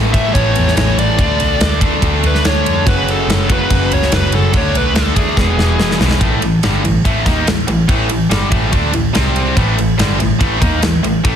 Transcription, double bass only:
Already playing: A1
0.35 A1
0.56 E2
0.76 A1
0.97 A1
1.18 D2
1.39 B1
1.60 D2
2.02 D2
2.23 D2
2.44 D2
2.65 F2
2.86 F#1
3.27 F#1
3.70 F#1
3.92 C#2
4.11 F#1
4.32 F#1
4.54 D2
4.72 B1
4.93 D2
5.37 E1
5.56 E1
5.78 E1
6.00 B1
6.21 A1
6.43 A1
6.63 G1
6.85 A1
7.05 A1
7.26 D#2
7.48 A1
7.67 A1
7.89 A1
8.10 A1
8.30 G1
8.51 A1
8.73 D2
8.94 A1
9.15 C2
9.56 A1
9.79 A1
9.99 G1
10.20 A1
10.40 A1
10.62 D#2
10.83 A1
11.04 A1
11.25 A1

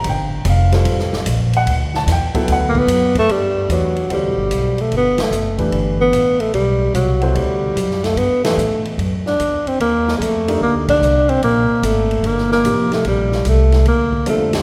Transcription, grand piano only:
0.09 G5
0.50 F5
0.72 G3 C4 F4 A4
1.57 F#5
1.96 A5
2.12 G5
2.34 F#3 B3 E4 A4
2.52 F#5
3.69 E3 A3 D4 G4 B4
4.10 B2 E4 F#4 A4 C5
5.58 E3 A3 D4 G4 B4
7.21 B2 E4 F#4 A4 C5
8.44 E3 A3 D4 G4 B4
10.48 D4 D#4 G4 A4 A#4
12.65 C3 F3 A#3 D#4 G4
14.26 D3 G3 C4 F4 A4

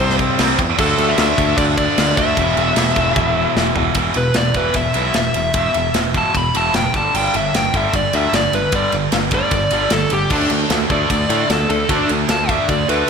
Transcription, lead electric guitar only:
Already playing: C5
0.80 A4
1.09 E5
1.58 D5
1.78 D5
2.17 E5
4.17 B4
4.36 D5
4.57 B4
4.76 E5
5.16 E5
6.18 A5
6.37 B5
6.57 A5
6.76 G5
6.97 A5
7.16 G5
7.36 E5
7.56 G5
7.76 E5
7.96 D5
8.16 E5
8.35 D5
8.55 B4
8.75 D5
9.35 D5
9.93 A4
10.13 G4
10.32 D4
10.92 D5
11.51 A4
11.71 A4
11.91 D4
12.30 A5
12.50 E5
12.70 D5
12.90 B4

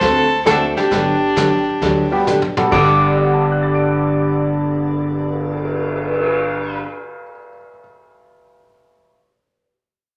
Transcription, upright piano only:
0.46 A3 C4 D4 F#4 A4
2.11 G3 B3 D4 F#4 G4
2.57 G3 B3 D4 F#4 A4
2.71 G2 D3 B3 A4
3.17 D5
3.25 F#5
3.33 A5
3.42 D6
3.52 F#6
3.63 A6
3.74 D7

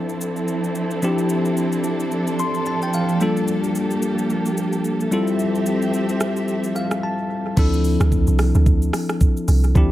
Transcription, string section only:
Already playing: F3 C4 D4 E4 A4
3.20 A#3 G4
5.12 C4 G4 E5

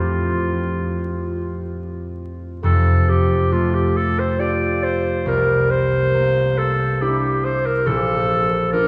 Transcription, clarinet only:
Already playing: F4
2.65 A4
3.09 G4
3.52 F4
3.74 G4
3.96 A4
4.19 C5
4.40 D5
4.83 C5
5.28 A#4
5.71 C5
6.58 A4
7.01 G4
7.44 C5
7.66 A#4
7.87 A4
8.72 A#4

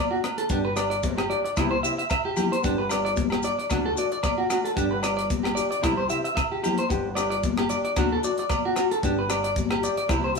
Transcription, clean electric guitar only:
0.11 F#4
0.38 A4
0.50 D4
0.65 B4
0.76 D5
0.90 D5
1.18 G4
1.30 D5
1.45 D5
1.57 E4
1.71 C5
1.83 E5
1.99 E5
2.11 E5
2.25 G4
2.37 G4
2.52 C5
2.64 D4
2.78 B4
2.91 D5
3.05 D5
3.32 G4
3.44 D5
3.59 D5
3.72 D4
3.86 A4
3.98 D5
4.12 D5
4.23 D5
4.38 F#4
4.50 F#4
4.65 A4
4.77 D4
4.91 B4
5.03 D5
5.17 D5
5.43 G4
5.55 D5
5.71 D5
5.83 E4
5.97 C5
6.10 E5
6.24 E5
6.36 E5
6.52 G4
6.63 G4
6.79 C5
6.90 muted clean electric guitar stroke
7.15 D5
7.30 D5
7.58 G4
7.70 D5
7.85 D5
7.97 D4
8.12 A4
8.24 D5
8.39 D5
8.50 D5
8.65 F#4
8.77 F#4
8.91 A4
9.05 D4
9.19 B4
9.30 D5
9.44 D5
9.71 G4
9.84 D5
9.98 D5
10.10 E4
10.24 C5

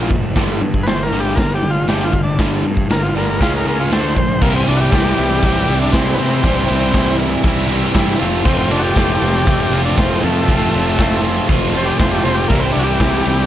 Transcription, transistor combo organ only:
0.83 B4
0.88 C5
1.03 A#4
1.20 G4
1.35 A#4
1.54 G4
1.70 F4
1.89 G4
2.04 F4
2.23 D4
2.91 A#4
3.02 F4
3.18 A#4
3.30 A#4
3.42 F4
3.56 A#4
3.68 A#4
3.80 F4
3.92 C5
4.17 C5
4.42 A#3
4.55 C4
4.68 D4
4.77 F#4
4.81 G4
5.81 D4
5.92 C4
6.14 B3
6.19 C4
8.45 C4
8.58 C4
8.71 D4
8.79 F#4
8.84 G4
9.85 D4
9.98 C4
10.21 G#3
10.25 A3
11.77 C5
11.85 G4
12.00 C5
12.11 G4
12.24 C5
12.35 G4
12.48 A#3
12.59 C4
12.72 D4
12.79 F#4
12.84 G4

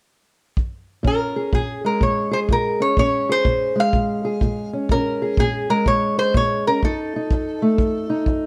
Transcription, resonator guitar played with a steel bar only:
1.07 A#4
1.55 G#4
1.86 A#4
2.03 C#5
2.33 C5
2.52 A#4
2.82 C#5
2.99 C#5
3.32 C5
3.80 F5
4.92 A#4
5.40 G#4
5.70 A#4
5.88 C#5
6.19 C5
6.37 C#5
6.67 A#4
6.85 A4

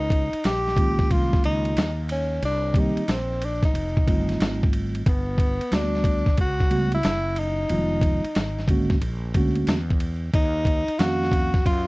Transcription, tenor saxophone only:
Already playing: D#4
0.46 G4
1.11 F4
1.45 D#4
2.12 C#4
2.45 D4
2.79 D#4
3.10 C4
3.45 D4
3.65 D#4
5.08 B3
5.74 D4
6.40 F#4
6.94 E4
7.40 D#4
10.35 D#4
10.99 F#4
11.66 F4

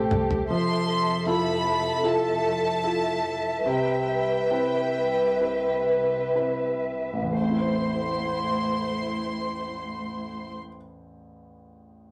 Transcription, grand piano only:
Already playing: A3 G4 A4 C5
0.50 F3
1.26 E4 F4 A4
2.03 E4 F4 A4
2.84 E4 F4 A4
3.66 C3
4.51 C4 E4 B4
5.41 C4 E4 B4
6.35 C4 E4 B4
7.13 A1
7.22 E2
7.32 A3
7.41 C4
7.51 E4
7.60 C5

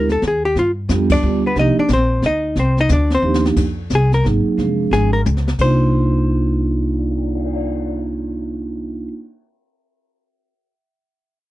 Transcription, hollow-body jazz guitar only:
Already playing: A#4
0.12 A4
0.28 G#4
0.45 G4
0.59 F4
1.12 D4 D5
1.46 B3 B4
1.59 D#4 D#5
1.79 D4 D5
1.93 C4 C5
2.26 D#4 D#5
2.59 C4 C5
2.80 D#4 D#5
2.92 D4 D5
3.14 C4 C5
3.95 G#4
4.14 A#4
4.93 G#4
5.13 A#4
5.61 C5

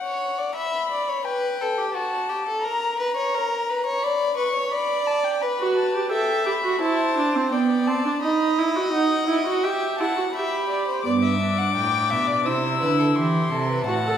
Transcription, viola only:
5.59 F#4
5.94 G4
6.12 A4
6.46 G4
6.64 F#4
6.81 E4
7.18 D4
7.36 C4
7.53 B3
7.88 C4
8.06 D4
8.22 D#4
8.59 E4
8.76 F#4
8.93 D#4
9.28 E4
9.46 F#4
9.64 G4
10.00 E4
10.17 F#4
10.34 G4
11.06 B3
11.41 D4
12.46 E4
13.87 F#4
14.06 A4

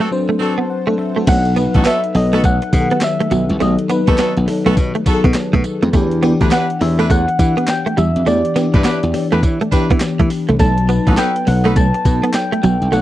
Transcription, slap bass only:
1.27 B1
1.75 A1
2.15 B1
2.44 B1
2.73 B2
3.31 B1
3.50 C2
3.61 B1
4.08 D#2
4.37 B1
4.66 B1
4.77 B2
5.06 muted slap bass stroke
5.24 B2
5.53 B2
5.83 F2
5.93 E2
6.41 D2
6.81 E2
7.10 E2
7.39 E3
7.98 E2
8.16 F2
8.27 E2
8.74 G2
9.03 E2
9.32 E2
9.43 E3
9.72 muted slap bass stroke
9.90 E3
10.20 E3
10.49 C2
10.60 B1
11.07 A1
11.47 B1
11.76 B1
12.05 B2
12.64 B1
12.82 C2
12.93 B1

